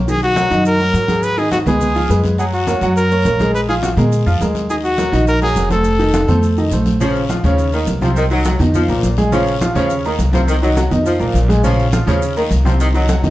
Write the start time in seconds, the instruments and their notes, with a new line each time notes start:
Already playing: upright bass B1
0.08 grand piano D#3 D#4 D#5, trumpet G#4, high conga, long guiro, maracas
0.23 trumpet F#4, high conga, maracas
0.36 grand piano F#3 F#4 A#4, high conga, short guiro, maracas
0.50 upright bass F#2, grand piano D#3 D#4 D#5, high conga, short guiro, maracas
0.65 trumpet A#4, long guiro, maracas
0.80 grand piano F#3 F#4 A#4, high conga, maracas
0.94 upright bass G#2, grand piano F#3 F#4 A#4, high conga, short guiro, maracas
1.08 grand piano F#3 F#4 G#4, high conga, short guiro, maracas
1.22 trumpet B4, high conga, long guiro, maracas
1.37 grand piano D#3 D#4 D#5, trumpet G#4, high conga, maracas
1.52 trumpet F#4, high conga, short guiro, maracas
1.66 upright bass C#2, grand piano G#3 G#4 B4, trumpet G#4, high conga, low conga, short guiro, maracas
1.81 high conga, low conga, long guiro, maracas
1.95 grand piano F3 F4 F5, high conga, maracas
2.09 upright bass F#2, grand piano G#3 G#4 B4, high conga, short guiro, maracas
2.24 high conga, short guiro, maracas
2.38 grand piano F#3 F#4 F#5, trumpet G#4, high conga, long guiro, maracas
2.53 trumpet F#4, high conga, maracas
2.67 grand piano A#3 A#4 C#5, high conga, short guiro, maracas
2.81 upright bass F#2, grand piano F#3 F#4 F#5, high conga, short guiro, maracas
2.96 trumpet A#4, high conga, long guiro, maracas
3.11 grand piano A#3 A#4 C#5, high conga, maracas
3.25 upright bass A#1, grand piano A#3 A#4 C#5, high conga, short guiro, maracas
3.39 grand piano G#3 G#4 A#4, high conga, short guiro, maracas
3.54 trumpet B4, high conga, long guiro, maracas
3.68 grand piano F3 F4 F5, trumpet G#4, high conga, maracas
3.83 trumpet F#4, high conga, short guiro, maracas
3.97 upright bass A#2, grand piano G#3 G#4 A#4, high conga, low conga, short guiro, maracas
4.12 high conga, long guiro, maracas
4.26 upright bass F2, grand piano F3 F4 F5, maracas
4.41 upright bass D#2, grand piano G#3 G#4 A#4, high conga, short guiro, maracas
4.55 high conga, short guiro, maracas
4.69 grand piano D#3 D#4 D#5, trumpet G#4, high conga, long guiro, maracas
4.84 trumpet F#4, high conga, maracas
4.98 grand piano F#3 F#4 A#4, high conga, short guiro, maracas
5.12 upright bass A#1, grand piano D#3 D#4 D#5, high conga, short guiro, maracas
5.27 trumpet A#4, high conga, long guiro, maracas
5.42 grand piano F#3 F#4 A#4, trumpet G#4, high conga, maracas
5.55 upright bass F1, grand piano F#3 F#4 A#4, high conga, short guiro, maracas
5.70 grand piano A3 A4 C5, trumpet A4, high conga, short guiro, maracas
5.84 high conga, long guiro, maracas
5.99 grand piano D#3 D#4 D#5, high conga, maracas
6.14 high conga, short guiro, maracas
6.28 upright bass F2, grand piano A3 A4 C5, high conga, low conga, short guiro, maracas
6.43 high conga, long guiro, maracas
6.57 grand piano D#3 D#4 D#5, high conga, maracas
6.71 upright bass A#1, grand piano A3 A4 C5, high conga, short guiro, maracas
6.86 high conga, short guiro, maracas
7.00 grand piano C#3 C#4 C#5, saxophone section F3, high conga, long guiro, maracas
7.15 high conga, maracas
7.29 grand piano F3 F4 F5, high conga, short guiro, maracas
7.44 upright bass D#2, grand piano C#3 C#4 C#5, saxophone section F3, short guiro, maracas
7.58 high conga, long guiro, maracas
7.73 saxophone section D#3, grand piano A#3 A#4 A#5, high conga, maracas
7.87 upright bass C2, high conga, short guiro, maracas
8.02 grand piano C3 C4 C5, saxophone section F3, high conga, short guiro, maracas
8.16 saxophone section D#3, high conga, long guiro, maracas
8.31 grand piano D#3 D#4 D#5, saxophone section F#3, high conga, maracas
8.45 grand piano F#3 F#4 F#5, high conga, short guiro, maracas
8.59 upright bass F2, grand piano D#3 D#4 D#5, high conga, low conga, short guiro, maracas
8.74 saxophone section F3, high conga, low conga, long guiro, maracas
8.88 upright bass C2, grand piano A#2 A#3 A#4, high conga, maracas
9.03 upright bass A#1, high conga, short guiro, maracas
9.17 grand piano G#3 G#4 G#5, high conga, short guiro, maracas
9.32 grand piano C#3 C#4 C#5, saxophone section F3, high conga, long guiro, maracas
9.47 high conga, maracas
9.61 grand piano F3 F4 F5, high conga, short guiro, maracas
9.75 upright bass D#2, grand piano C#3 C#4 C#5, saxophone section F3, high conga, short guiro, maracas
9.90 high conga, long guiro, maracas
10.04 saxophone section D#3, grand piano A#3 A#4 A#5, high conga, maracas
10.19 upright bass C2, high conga, short guiro, maracas
10.33 grand piano C3 C4 C5, saxophone section F3, high conga, short guiro, maracas
10.47 saxophone section D#3, high conga, long guiro, maracas
10.62 grand piano D#3 D#4 D#5, saxophone section F#3, high conga, maracas
10.76 grand piano F#3 F#4 F#5, high conga, short guiro, maracas
10.91 upright bass F2, grand piano D#3 D#4 D#5, high conga, low conga, short guiro, maracas
11.06 saxophone section F3, high conga, long guiro, maracas
11.20 upright bass C2, grand piano A#2 A#3 A#4, high conga, maracas
11.34 upright bass A#1, high conga, short guiro, maracas
11.49 grand piano G#3 G#4 G#5, high conga, short guiro, maracas
11.64 grand piano C#3 C#4 C#5, saxophone section F3, high conga, long guiro, maracas
11.79 maracas
11.92 grand piano F3 F4 F5, high conga, short guiro, maracas
12.07 upright bass D#2, grand piano C#3 C#4 C#5, saxophone section F3, high conga, short guiro, maracas
12.22 high conga, long guiro, maracas
12.36 saxophone section D#3, grand piano A#3 A#4 A#5, high conga, maracas
12.51 upright bass C2, high conga, short guiro, maracas
12.65 grand piano C3 C4 C5, saxophone section F3, high conga, short guiro, maracas
12.80 saxophone section D#3, high conga, long guiro, maracas
12.94 grand piano D#3 D#4 D#5, saxophone section F#3, high conga, maracas
13.08 grand piano F#3 F#4 F#5, high conga, short guiro, maracas
13.23 upright bass F2, grand piano D#3 D#4 D#5, high conga, low conga, short guiro, maracas